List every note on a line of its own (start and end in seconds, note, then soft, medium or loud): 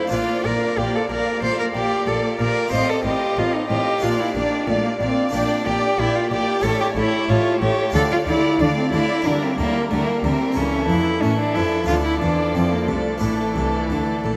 0.00 0.11 A3 soft
0.00 0.12 E4 medium
0.00 0.11 C5 soft
0.07 2.66 A#3 soft
0.07 0.43 A#3 soft
0.07 2.67 D4 soft
0.07 2.67 F4 soft
0.07 0.42 F5 soft
0.12 0.20 A#1 soft
0.12 0.20 A#2 soft
0.12 0.41 A#2 soft
0.12 0.47 F4 medium
0.12 0.43 D5 soft
0.44 0.52 A#1 soft
0.44 0.52 A#2 soft
0.44 0.74 A#2 soft
0.44 0.76 A#3 soft
0.44 0.80 A#4 medium
0.44 0.76 D5 soft
0.44 0.75 F5 soft
0.76 0.85 A#1 soft
0.76 0.85 A#2 soft
0.76 1.06 A#2 soft
0.76 1.08 A#3 soft
0.76 0.97 G4 medium
0.76 1.09 D5 soft
0.76 1.07 F5 soft
0.95 1.10 A4 medium
1.08 1.17 A#1 soft
1.08 1.18 A#2 soft
1.08 1.39 A#2 soft
1.08 1.41 A#3 soft
1.08 1.42 A#4 medium
1.08 1.41 D5 soft
1.08 1.40 F5 soft
1.41 1.50 A#1 soft
1.41 1.50 A#2 soft
1.41 1.71 A#2 soft
1.41 1.73 A#3 soft
1.41 1.58 C5 medium
1.41 1.73 D5 soft
1.41 1.73 F5 soft
1.59 1.66 A#4 medium
1.74 1.82 A#1 soft
1.74 1.82 A#2 soft
1.74 2.04 A#2 soft
1.74 2.06 A#3 soft
1.74 2.09 G4 medium
1.74 2.06 D5 soft
1.74 2.05 F5 soft
2.06 2.15 A#1 soft
2.06 2.15 A#2 soft
2.06 2.36 A#2 soft
2.06 2.38 A#3 soft
2.06 2.40 A4 medium
2.06 2.38 D5 soft
2.06 2.38 F5 soft
2.39 2.47 A#1 soft
2.39 2.69 A#2 soft
2.39 2.48 A#2 soft
2.39 2.71 A#3 soft
2.39 2.72 A#4 medium
2.39 2.71 D5 soft
2.39 2.71 F5 soft
2.68 3.96 C4 soft
2.68 3.97 D#4 soft
2.68 3.98 F4 soft
2.72 2.80 A1 soft
2.72 2.80 A2 soft
2.72 3.01 A2 soft
2.72 3.04 C4 soft
2.72 2.91 C5 medium
2.72 3.03 D#5 soft
2.72 3.03 F5 soft
2.89 3.05 A4 medium
3.04 3.12 A1 soft
3.04 3.34 A2 soft
3.04 3.13 A2 soft
3.04 3.36 C4 soft
3.04 3.40 G4 medium
3.04 3.35 D#5 soft
3.04 3.36 F5 soft
3.37 3.45 A1 soft
3.37 3.67 A2 soft
3.37 3.45 A2 soft
3.37 3.69 C4 soft
3.37 3.56 F4 medium
3.37 3.68 D#5 soft
3.37 3.68 F5 soft
3.55 3.70 D#4 medium
3.69 3.78 A1 soft
3.69 3.78 A2 soft
3.69 4.00 A2 soft
3.69 4.02 C4 soft
3.69 4.04 G4 medium
3.69 4.02 D#5 soft
3.69 4.01 F5 soft
3.99 4.10 A#1 soft
3.99 5.27 A#3 soft
3.99 5.28 D4 soft
3.99 5.29 F4 soft
3.99 4.33 D5 soft
3.99 4.33 F5 soft
4.03 4.11 A#2 soft
4.03 4.32 A#2 soft
4.03 4.34 A#3 soft
4.03 4.21 F4 medium
4.20 4.35 E4 medium
4.35 4.43 A#1 soft
4.35 4.43 A#2 soft
4.35 4.65 A#2 soft
4.35 4.67 A#3 soft
4.35 4.70 D4 medium
4.35 4.66 D5 soft
4.35 4.66 F5 soft
4.67 4.75 A#1 soft
4.67 4.97 A#2 soft
4.67 4.76 A#2 soft
4.67 4.87 A3 medium
4.67 4.99 A#3 soft
4.67 4.99 D5 soft
4.67 4.99 F5 soft
4.85 5.01 A#3 medium
5.00 5.08 A#1 soft
5.00 5.08 A#2 soft
5.00 5.30 A#2 soft
5.00 5.32 A#3 soft
5.00 5.33 C4 medium
5.00 5.32 D5 soft
5.00 5.32 F5 soft
5.29 5.41 A#1 medium
5.29 6.58 A#3 soft
5.29 6.58 D4 soft
5.29 6.59 G4 soft
5.33 5.41 A#2 soft
5.33 5.63 A#2 soft
5.33 5.65 A#3 soft
5.33 5.68 D4 medium
5.33 5.65 D5 soft
5.33 5.65 G5 soft
5.66 5.74 A#1 soft
5.66 5.74 A#2 soft
5.66 5.95 A#2 soft
5.66 5.98 A#3 soft
5.66 6.01 G4 medium
5.66 5.97 D5 soft
5.66 5.97 G5 soft
5.98 6.06 A#1 soft
5.98 6.07 A#2 soft
5.98 6.28 A#2 soft
5.98 6.30 A#3 soft
5.98 6.17 E4 medium
5.98 6.30 D5 soft
5.98 6.30 G5 soft
6.16 6.31 F4 medium
6.31 6.39 A#1 soft
6.31 6.39 A#2 soft
6.31 6.61 A#2 soft
6.31 6.63 A#3 soft
6.31 6.65 G4 medium
6.31 6.63 D5 soft
6.31 6.63 G5 soft
6.60 6.71 A1 soft
6.60 6.71 A2 medium
6.60 7.88 A3 soft
6.60 6.95 A3 soft
6.60 7.89 C#4 soft
6.60 7.90 E4 soft
6.60 6.80 A4 medium
6.60 6.96 C#5 soft
6.60 6.95 E5 soft
6.64 6.93 A2 soft
6.81 6.87 G4 medium
6.96 7.04 A1 medium
6.96 7.04 A2 soft
6.96 7.26 A2 soft
6.96 7.27 A3 soft
6.96 7.31 E4 medium
6.96 7.28 C#5 soft
6.96 7.27 E5 soft
7.28 7.36 A1 medium
7.28 7.37 A2 medium
7.28 7.59 A2 soft
7.28 7.60 A3 soft
7.28 7.61 F4 medium
7.28 7.60 C#5 soft
7.28 7.60 E5 soft
7.61 7.69 A1 medium
7.61 7.70 A2 medium
7.61 7.91 A2 soft
7.61 7.93 A3 soft
7.61 7.94 G4 medium
7.61 7.93 C#5 soft
7.61 7.93 E5 soft
7.90 8.02 D2 medium
7.90 9.19 A3 soft
7.90 8.26 A3 medium
7.90 9.20 D4 soft
7.90 9.21 F4 soft
7.90 8.25 F5 medium
7.94 8.02 D3 medium
7.94 8.24 D3 soft
7.94 8.01 A4 medium
7.94 8.26 D5 soft
8.12 8.18 F4 medium
8.26 8.34 D2 soft
8.26 8.35 D3 soft
8.26 8.57 D3 soft
8.26 8.58 A3 soft
8.26 8.62 E4 medium
8.26 8.59 D5 soft
8.26 8.58 F5 soft
8.59 8.67 D2 medium
8.59 8.67 D3 medium
8.59 8.89 D3 soft
8.59 8.91 A3 soft
8.59 8.77 D4 medium
8.59 8.91 D5 soft
8.59 8.91 F5 soft
8.77 8.92 C4 medium
8.92 9.00 D2 medium
8.92 9.00 D3 soft
8.92 9.22 D3 soft
8.92 9.25 A3 soft
8.92 9.27 E4 medium
8.92 9.25 D5 soft
8.92 9.24 F5 soft
9.22 9.33 D2 medium
9.22 9.55 D3 soft
9.22 9.33 D3 medium
9.22 9.57 G3 medium
9.22 9.44 D4 medium
9.22 10.51 E4 soft
9.22 9.57 A#4 soft
9.22 9.57 E5 soft
9.43 9.58 C4 medium
9.57 9.65 D2 medium
9.57 9.66 D3 medium
9.57 9.88 D3 soft
9.57 9.90 G3 soft
9.57 9.91 A#3 medium
9.57 9.90 A#4 soft
9.57 9.90 E5 soft
9.90 9.98 D2 medium
9.90 10.21 D3 soft
9.90 9.99 D3 medium
9.90 10.22 G3 soft
9.90 10.10 A3 medium
9.90 10.23 A#4 soft
9.90 10.23 E5 soft
10.08 10.26 A#3 medium
10.23 10.31 D2 medium
10.23 10.32 D3 medium
10.23 10.54 D3 soft
10.23 10.56 G3 soft
10.23 10.58 C4 medium
10.23 10.56 A#4 soft
10.23 10.56 E5 soft
10.52 10.87 C#2 medium
10.52 11.22 A3 soft
10.52 11.83 E4 soft
10.56 10.87 C#3 medium
10.56 10.86 C#3 soft
10.56 11.19 E3 medium
10.56 10.89 C#4 medium
10.56 11.19 A4 medium
10.56 11.18 E5 medium
10.89 11.20 F2 medium
10.89 11.19 F3 soft
10.89 11.20 F3 medium
10.89 11.24 E4 medium
11.22 11.53 A2 medium
11.22 11.87 E3 medium
11.22 11.53 A3 medium
11.22 11.52 A3 soft
11.22 11.39 C#4 medium
11.22 11.87 A4 soft
11.22 11.87 E5 soft
11.39 11.57 D4 medium
11.54 11.85 F2 medium
11.54 11.86 F3 medium
11.54 11.85 F3 soft
11.54 11.87 E4 medium
11.84 12.19 D2 medium
11.84 12.18 A3 soft
11.84 13.17 D4 soft
11.84 13.17 F4 soft
11.84 11.94 F4 medium
11.88 12.19 D3 medium
11.88 12.18 D3 soft
11.88 13.19 F3 medium
11.88 13.19 A4 soft
11.88 13.21 D5 medium
12.05 12.20 E4 medium
12.21 12.52 E2 medium
12.21 12.53 E3 medium
12.21 12.52 E3 soft
12.21 12.56 D4 medium
12.54 12.85 F2 medium
12.54 12.86 F3 medium
12.54 12.85 F3 soft
12.54 12.74 C4 medium
12.72 12.90 A#3 medium
12.88 13.19 C2 medium
12.88 13.19 C3 soft
12.88 13.20 C3 medium
12.88 13.22 A3 medium
13.18 13.53 A1 medium
13.18 14.37 A3 soft
13.18 14.37 D4 soft
13.18 14.37 E4 soft
13.18 14.37 A4 soft
13.22 13.53 A2 medium
13.22 13.53 A2 soft
13.22 14.37 E3 soft
13.22 14.37 A3 medium
13.22 14.37 D5 medium
13.55 13.87 C2 soft
13.55 13.87 C3 soft
13.55 13.86 C3 soft
13.90 14.21 D2 soft
13.90 14.21 D3 soft
13.90 14.20 D3 soft
14.23 14.37 A#1 soft
14.23 14.37 A#2 soft